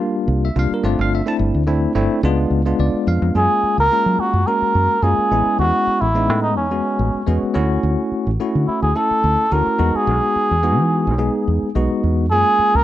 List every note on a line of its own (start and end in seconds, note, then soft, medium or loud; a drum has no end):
0.00 0.47 G3 medium
0.00 0.47 A#3 medium
0.00 0.47 D4 medium
0.00 0.48 F4 loud
0.28 0.49 C2 medium
0.45 0.56 E5 medium
0.56 0.67 C2 loud
0.56 0.83 G3 medium
0.56 0.84 A#3 medium
0.56 0.83 D4 medium
0.56 0.83 F4 medium
0.56 0.72 F5 loud
0.74 0.85 A#4 medium
0.83 0.95 G1 medium
0.83 1.21 A3 medium
0.83 1.21 C4 medium
0.83 1.21 D4 medium
0.83 1.21 F4 medium
0.83 0.99 D5 medium
0.99 1.20 G1 medium
0.99 1.12 F5 loud
1.15 1.28 E5 medium
1.26 1.62 A3 medium
1.26 1.62 C4 medium
1.26 1.63 D4 medium
1.26 1.63 E4 medium
1.26 1.35 A5 loud
1.39 1.51 G1 loud
1.54 1.86 D2 medium
1.67 1.92 A3 medium
1.67 1.92 C4 medium
1.67 1.92 D4 medium
1.67 1.92 E4 loud
1.95 2.07 G1 medium
1.95 2.20 A3 loud
1.95 2.20 C4 medium
1.95 2.20 D4 medium
1.95 2.20 E4 loud
2.23 2.45 C#2 loud
2.23 2.61 G#3 medium
2.23 2.61 B3 medium
2.23 2.61 D4 medium
2.23 2.61 F4 loud
2.50 2.72 C#2 medium
2.65 3.34 G#3 medium
2.65 3.35 B3 medium
2.65 3.35 D4 medium
2.65 3.35 F4 loud
2.79 2.91 C#2 loud
2.79 3.06 D5 medium
2.94 muted fingered electric bass stroke soft
3.07 3.19 F2 medium
3.07 3.34 F5 medium
3.22 3.32 F2 medium
3.35 3.47 F#2 medium
3.35 3.85 G#3 medium
3.35 3.85 A#3 medium
3.35 3.85 C#4 medium
3.35 3.85 F4 medium
3.35 3.76 G#4 loud
3.63 muted fingered electric bass stroke soft
3.78 3.88 C#2 medium
3.78 4.22 A#4 loud
3.91 4.41 G#3 medium
3.91 4.41 A#3 medium
3.91 4.41 C#4 medium
3.91 4.42 F4 medium
4.06 4.16 F#3 medium
4.18 4.49 F#4 loud
4.18 muted fingered electric bass stroke soft
4.34 4.44 F#2 medium
4.47 4.97 G#3 medium
4.47 4.97 A#3 medium
4.47 4.97 C#4 medium
4.47 4.97 F#4 medium
4.47 5.04 A#4 loud
4.62 muted fingered electric bass stroke soft
4.75 4.87 F#2 medium
5.02 5.14 F#2 loud
5.02 5.30 G#3 medium
5.02 5.31 A#3 medium
5.02 5.31 C#4 medium
5.02 5.32 F4 medium
5.02 5.59 G#4 medium
5.18 muted fingered electric bass stroke soft
5.31 5.43 A1 medium
5.31 6.06 G#3 medium
5.31 6.06 B3 medium
5.31 6.06 C#4 medium
5.31 6.06 E4 medium
5.46 muted fingered electric bass stroke soft
5.59 5.71 E2 medium
5.59 6.03 F#4 loud
5.87 muted fingered electric bass stroke soft
6.01 6.30 A1 medium
6.01 6.42 E4 medium
6.15 6.65 G#3 medium
6.15 6.65 B3 medium
6.15 6.65 C#4 medium
6.15 6.65 D#4 medium
6.30 6.58 A2 medium
6.42 6.56 D#4 medium
6.57 6.80 E2 medium
6.57 7.51 C#4 medium
6.71 7.21 G#3 medium
6.71 7.21 B3 medium
6.71 7.21 C#4 medium
6.71 7.21 F#4 medium
6.99 7.11 A1 medium
7.15 muted fingered electric bass stroke soft
7.27 7.39 E2 loud
7.27 7.55 G#3 medium
7.27 7.55 B3 medium
7.27 7.53 C#4 medium
7.27 7.54 F#4 medium
7.43 muted fingered electric bass stroke soft
7.54 7.77 D2 medium
7.54 8.29 A3 loud
7.54 8.29 C#4 medium
7.54 8.30 E4 medium
7.54 8.30 F#4 loud
7.83 7.95 D2 medium
8.12 muted fingered electric bass stroke soft
8.27 8.37 A1 medium
8.40 8.89 A3 medium
8.40 8.89 C#4 medium
8.40 8.90 E4 medium
8.40 8.90 F#4 medium
8.55 8.65 D3 medium
8.67 8.82 E4 medium
8.67 muted fingered electric bass stroke soft
8.82 8.92 D2 medium
8.82 8.98 G#4 medium
8.95 9.45 A3 medium
8.95 9.45 C#4 medium
8.95 9.45 E4 medium
8.95 9.54 A4 medium
8.95 9.46 A4 medium
9.11 muted fingered electric bass stroke soft
9.24 9.35 D2 medium
9.51 9.63 D2 loud
9.51 9.79 A3 medium
9.51 9.80 C#4 medium
9.51 9.80 E4 medium
9.51 9.78 F#4 medium
9.51 9.97 A#4 medium
9.67 muted fingered electric bass stroke soft
9.78 9.91 E2 medium
9.78 10.53 G#3 medium
9.78 10.53 B3 medium
9.78 10.54 D#4 medium
9.78 10.54 F#4 medium
9.95 11.63 G#4 medium
9.95 muted fingered electric bass stroke soft
10.07 10.19 B1 loud
10.36 muted fingered electric bass stroke soft
10.51 10.79 E2 medium
10.63 11.13 G#3 medium
10.63 11.13 B3 medium
10.63 11.13 D#4 medium
10.63 11.13 F#4 medium
10.79 11.09 E3 medium
11.07 11.28 B1 medium
11.18 11.68 G#3 medium
11.18 11.68 B3 medium
11.18 11.69 D#4 medium
11.18 11.69 G#4 medium
11.48 11.59 E2 medium
11.63 muted fingered electric bass stroke soft
11.75 11.87 B1 medium
11.75 12.25 G#3 medium
11.75 12.25 B3 medium
11.75 12.25 D#4 medium
11.75 12.25 F#4 loud
11.91 muted fingered electric bass stroke soft
12.04 12.31 E2 medium
12.31 12.43 F#2 medium
12.31 12.81 G#3 medium
12.31 12.81 A#3 medium
12.31 12.81 C#4 medium
12.31 12.81 F4 medium
12.31 12.78 G#4 loud
12.59 muted fingered electric bass stroke soft
12.75 12.84 C#2 medium
12.75 12.84 A#4 loud